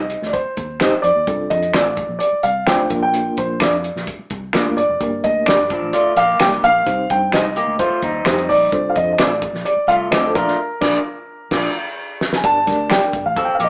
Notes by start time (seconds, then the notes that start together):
Already playing: C2 D#5
0.10 closed hi-hat
0.22 D2, snare
0.26 D5
0.33 C5, kick, closed hi-hat
0.45 muted fingered electric bass stroke
0.57 D#2, kick, closed hi-hat
0.80 C4 D#4 G4 C5 D#5, finger snap, snare, closed hi-hat
1.02 F2 D5, closed hi-hat
1.15 D#2
1.27 C2 C4 D4 F4 A4, kick, closed hi-hat
1.50 F2 D#5, kick, closed hi-hat
1.63 closed hi-hat
1.74 A1 C4 F4 A4 D5, finger snap, snare, closed hi-hat
1.97 kick, closed hi-hat
2.09 A#1
2.19 D5, closed hi-hat
2.32 muted fingered electric bass stroke
2.43 C2 F5, closed hi-hat
2.67 D2 C4 D4 F4 A4 C5 D5 G5, finger snap, snare, closed hi-hat
2.90 A#1 A#3 D4 F4 A#4, kick, closed hi-hat
3.03 G5
3.14 closed hi-hat
3.37 A#1 C5, kick, closed hi-hat
3.60 F2 D4 F4 A#4 D5, finger snap, snare, closed hi-hat
3.84 closed hi-hat
3.96 A#1, snare
4.07 kick, closed hi-hat
4.19 muted fingered electric bass stroke
4.30 C2, kick, closed hi-hat
4.53 A#3 D4 F4 A#4 D5, finger snap, snare, closed hi-hat
4.65 D2
4.77 G1 D5, closed hi-hat
4.89 F1
5.00 G1 A#3 D4 G4 A#4, kick, closed hi-hat
5.24 D2 D#5, kick, closed hi-hat
5.46 G1 D4 G4 A#4 D5, finger snap, snare, closed hi-hat
5.70 F3 D4, kick, closed hi-hat
5.82 A1
5.93 A3 F4 D5, closed hi-hat
6.05 muted fingered electric bass stroke
6.16 A#1 A#3 G4 F5, closed hi-hat
6.39 C2 A#3 D4 G4 A#4 D5 G5, finger snap, snare, closed hi-hat
6.52 closed hi-hat
6.63 A#1 F5, closed hi-hat
6.86 C2 C4 D#4 G4 C5, kick, closed hi-hat
7.10 G2 G5, kick, closed hi-hat
7.32 C2 D#4 G4 C5 D#5, finger snap, snare, closed hi-hat
7.56 A#3 G4, closed hi-hat
7.67 D2
7.79 A3 F4 C5, kick, closed hi-hat
7.90 muted fingered electric bass stroke
8.02 D#2 G3 D#4, kick, closed hi-hat
8.25 F2 C4 D#4 G4 C5 D#5, finger snap, snare, closed hi-hat
8.38 closed hi-hat
8.48 A#1 D5, open hi-hat
8.72 C2 D4 F4 A4 C5, kick, closed hi-hat
8.90 F5
8.96 F2 D#5, kick, closed hi-hat
9.12 D#5
9.18 A1 C4 F4 A4 D5, finger snap, snare, closed hi-hat
9.42 kick, closed hi-hat
9.53 A#1, snare
9.65 D5, closed hi-hat
9.76 muted fingered electric bass stroke
9.87 C2 A3 F4 F5, closed hi-hat
10.11 D2 C4 D4 F4 G4 A4 C5 D5 D#5, finger snap, snare, closed hi-hat
10.27 A4
10.34 A#1 A3 D4 F4 A#4 D5, kick, closed hi-hat
10.48 snare
10.81 A#1 D4 F4 A#4 D5, kick, snare, crash
11.51 A#1 D4 F4 A#4 D5, kick, snare, crash
12.21 snare
12.33 G#5, snare
12.44 G1 D4 G4 A#4 D5 A5, kick, closed hi-hat
12.67 D2 D4 G4 A#4 D5, kick, snare, closed hi-hat
12.90 D4 G4 A#4 D5 G5, finger snap, snare, closed hi-hat
13.02 closed hi-hat
13.13 G1, kick, closed hi-hat
13.25 A1 F5
13.37 C4 A4, kick, closed hi-hat
13.45 G5, muted fingered electric bass stroke
13.55 F5
13.60 A#1 A#3 G4, closed hi-hat
13.64 D#5